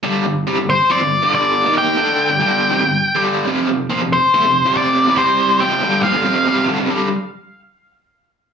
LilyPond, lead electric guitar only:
\new Staff \with { instrumentName = "Lead electric guitar" } { \time 4/4 \key g \minor \tempo 4 = 140 r4. c''8 d''4 d''4 | g''2.~ g''8 r8 | r4. c''4. d''4 | c''4 g''4 f''4. r8 |
r1 | }